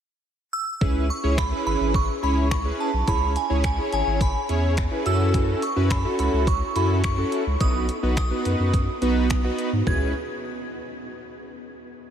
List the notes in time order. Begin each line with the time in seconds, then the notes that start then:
0.53 E6
0.81 C#2 C#4 E4 G#4 B4, kick
1.10 C#6
1.23 C#2 C#4 E4 G#4 C#5
1.38 B5, finger snap, kick
1.52 C#4 E4 G#4 B4
1.66 G#1 B5
1.80 G#1
1.94 C#6, kick
2.23 C#2 C#4 E4 G#4 C#5 B5
2.51 C#6, finger snap, kick
2.65 C#4 E4 G#4 B4
2.80 A5
2.93 B1
3.07 C#2 C#4 E4 G#4 C#5 B5, kick, closed hi-hat
3.36 G#5, closed hi-hat
3.50 C#2 C#4 E4 G#4 C#5
3.64 G#5, finger snap, kick, closed hi-hat
3.78 C#4 E4 G#4 C#5
3.92 G#1 G#5, closed hi-hat
4.07 G#1
4.21 B5, kick, closed hi-hat
4.49 E2 C#4 E4 G#4 C#5, closed hi-hat
4.77 finger snap, kick, closed hi-hat
4.91 C#4 E4 G#4 B4
5.05 F#2 C#4 E4 F#4 A4 E6, closed hi-hat
5.34 kick, closed hi-hat
5.62 C#6, closed hi-hat
5.76 F#2 C#4 E4 F#4 B4
5.90 B5, finger snap, kick, closed hi-hat
6.05 C#4 E4 F#4 A4
6.19 C#2 B5, closed hi-hat
6.33 C#2
6.47 C#6, kick, closed hi-hat
6.76 F#2 C#4 E4 F#4 A4 B5, closed hi-hat
7.04 C#6, finger snap, kick, closed hi-hat
7.18 C#4 E4 F#4 A4
7.32 closed hi-hat
7.47 C#2
7.60 B1 B3 D#4 F#4 B4 D#6, kick, closed hi-hat
7.89 closed hi-hat
8.03 B1 B3 D#4 F#4 B4
8.17 D#6, finger snap, kick, closed hi-hat
8.31 B3 D#4 F#4 B4
8.45 F#2, closed hi-hat
8.60 F#2
8.74 kick, closed hi-hat
9.02 B1 B3 D#4 F#4 B4, closed hi-hat
9.30 finger snap, kick, closed hi-hat
9.44 B3 D#4 F#4 B4
9.59 closed hi-hat
9.73 G#2
9.87 C#2 C#4 E4 G#4 B4 G#6, kick, floor tom